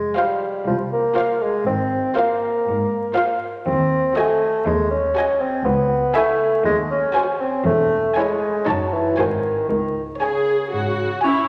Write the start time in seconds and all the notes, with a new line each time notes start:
Already playing: G#3
0.16 G3 F4 C5 F5
0.66 C2 F3
0.92 A#3
1.15 F4 C5 F5
1.42 G#3
1.66 G#1 G#2 C4
2.16 A#3 F4 C5 F5
2.66 G#2
3.15 F4 C5 F5
3.66 D#2 C4
4.16 A3 F#4 D#5 G#5
4.66 D#2 G#3
4.91 C#4
5.16 F#4 D#5 G#5
5.41 C4
5.66 C#2 B3
6.15 A3 E4 E5 G#5
6.65 D#2 G#3
6.90 C#4
7.15 F#4 C5 G#5
7.41 C4
7.66 E1 E2 A3
8.15 G#3 E4 C#5 G#5
8.67 F#1 F#2 F#3 D#4 C#5 A5
8.93 E3
9.17 G#1 G#2 D#3 F#4 C5 G#5
9.69 C#2 D#3
10.21 C#3 G#4 C#5 G#5
10.73 G#2 F#4
11.23 C#4 E4 C#5 G#5